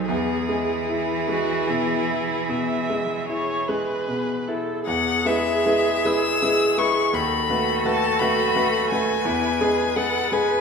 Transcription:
0.00 0.11 B1 medium
0.00 0.11 F#3 soft
0.00 0.11 D#4 soft
0.00 0.11 C5 soft
0.07 2.47 E2 medium
0.07 4.49 E3 medium
0.07 1.16 G#4 medium
0.07 4.25 G#4 medium
0.49 1.13 G#3 soft
0.89 1.54 E4 soft
1.28 1.94 G#3 soft
1.28 1.71 F#4 medium
1.69 2.34 B2 soft
1.69 2.51 E4 medium
2.11 2.74 E4 soft
2.49 3.13 B2 soft
2.49 3.28 E5 medium
2.90 3.54 G#3 soft
3.29 3.93 E4 soft
3.29 3.70 C#5 medium
3.68 4.33 G#3 soft
3.68 4.49 B4 medium
4.08 4.72 B2 soft
4.48 4.88 E4 soft
4.48 4.86 A4 medium
4.86 5.25 E2 medium
4.86 7.15 G#4 medium
4.86 5.28 F#5 medium
5.26 5.62 G#3 medium
5.26 5.62 E4 soft
5.26 5.63 B4 medium
5.26 6.07 E5 medium
5.66 6.02 G#3 soft
5.66 6.02 E4 soft
5.66 6.02 B4 soft
6.05 6.39 G#3 soft
6.05 6.39 E4 medium
6.05 6.39 B4 medium
6.05 6.80 E6 loud
6.42 6.75 G#3 soft
6.42 6.75 E4 medium
6.42 6.75 B4 soft
6.78 7.10 G#3 soft
6.78 7.10 E4 soft
6.78 7.10 B4 medium
6.78 7.16 C#6 medium
7.13 7.48 D#2 medium
7.13 9.26 F#4 medium
7.13 9.24 A4 medium
7.13 7.87 B5 medium
7.50 7.82 A3 soft
7.50 7.82 F#4 soft
7.50 7.82 B4 medium
7.85 8.17 A3 soft
7.85 8.17 F#4 medium
7.85 8.17 B4 medium
7.85 8.21 A5 medium
8.20 8.52 A3 medium
8.20 8.52 F#4 medium
8.20 8.53 B4 medium
8.20 8.90 B5 medium
8.56 8.87 A3 medium
8.56 8.88 F#4 medium
8.56 8.88 B4 medium
8.90 9.23 A3 medium
8.90 9.23 F#4 soft
8.90 9.23 B4 medium
8.90 9.98 G#5 medium
9.25 9.59 E2 medium
9.25 9.63 E4 medium
9.25 10.61 B4 medium
9.61 9.93 G#3 medium
9.61 9.98 G#4 medium
9.61 9.93 G#4 medium
9.61 9.94 B4 soft
9.96 10.29 G#3 soft
9.96 10.29 G#4 soft
9.96 10.34 A4 medium
9.96 10.29 B4 soft
9.96 10.34 F#5 medium
10.32 10.61 G#3 medium
10.32 10.61 G#4 soft
10.32 10.61 B4 medium
10.32 10.61 G#5 medium

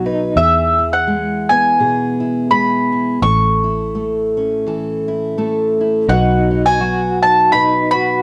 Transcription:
0.00 0.33 B1 medium
0.00 0.33 B2 medium
0.00 0.36 F#3 medium
0.00 0.33 D#4 medium
0.06 0.36 D#4 medium
0.06 0.33 B4 medium
0.36 3.18 E2 medium
0.36 3.19 E3 medium
0.36 1.79 G#4 medium
0.36 0.93 E5 medium
0.79 2.19 E4 soft
0.93 1.51 F#5 medium
1.07 2.49 G#3 soft
1.49 3.23 B3 soft
1.49 2.47 G#5 medium
1.79 3.19 B2 medium
1.79 2.50 G#4 medium
2.20 2.91 E4 medium
2.50 3.19 G#3 medium
2.50 3.23 G#4 medium
2.50 3.22 B5 medium
2.92 3.19 E4 soft
3.22 6.04 A1 medium
3.22 6.05 A2 medium
3.22 4.66 A4 medium
3.22 4.62 C#6 medium
3.64 5.07 E4 medium
3.95 5.37 A3 medium
4.37 6.06 C#4 soft
4.67 6.06 E3 medium
4.67 5.37 A4 medium
5.08 5.79 E4 medium
5.38 6.05 A3 medium
5.38 6.06 A4 medium
5.81 6.06 E4 medium
6.08 8.22 B1 medium
6.08 7.51 B2 medium
6.08 6.80 F#3 medium
6.08 6.79 D#4 medium
6.08 6.50 D#4 soft
6.08 6.50 F#4 medium
6.08 6.62 F#5 medium
6.13 7.53 B4 medium
6.51 6.66 D#4 medium
6.66 7.93 F#4 soft
6.66 7.18 G#5 medium
6.81 8.22 F#3 medium
6.81 7.51 F#4 medium
7.23 8.22 D#4 medium
7.23 7.52 A5 medium
7.52 8.22 B2 medium
7.52 7.92 D#4 medium
7.52 8.22 B4 medium
7.52 7.90 B5 medium
7.91 8.22 F#4 medium
7.91 8.22 B5 medium
7.95 8.22 F#4 medium

